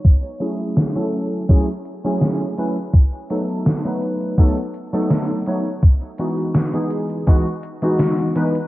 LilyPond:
<<
  \new Staff \with { instrumentName = "Synth keys" } { \time 4/4 \key e \major \tempo 4 = 83 r8 <fis a cis' e' gis'>8. <fis a cis' e' a'>8. <fis a cis' e' gis'>16 r8 <fis a cis' e' gis'>8. <fis a cis' e' b'>16 r16 | r8 <fis a b dis' a'>8. <fis a b dis' b'>8. <fis a b dis' a'>16 r8 <fis a b dis' a'>8. <fis a b dis' cis''>16 r16 | r8 <e gis b dis' fis'>8. <e gis b dis' gis'>8. <e gis b dis' fis'>16 r8 <e gis b dis' fis'>8. <e gis b dis' b'>16 r16 | }
  \new DrumStaff \with { instrumentName = "Drums" } \drummode { \time 4/4 <hh bd>16 hh16 hh16 hh16 <hh sn>16 hh16 hh16 hh16 <hh bd>16 hh16 hh16 hh16 <hh sn>16 hh16 hh16 hh16 | <hh bd>16 hh16 hh16 hh16 <hh sn>16 hh16 hh16 hh16 <hh bd>16 hh16 hh16 hh16 <hh sn>16 hh16 hh16 hh16 | <hh bd>16 hh16 hh16 hh16 <hh sn>16 hh16 hh16 hh16 <hh bd>16 hh16 hh16 hh16 <hh sn>16 hh16 hh16 hh16 | }
>>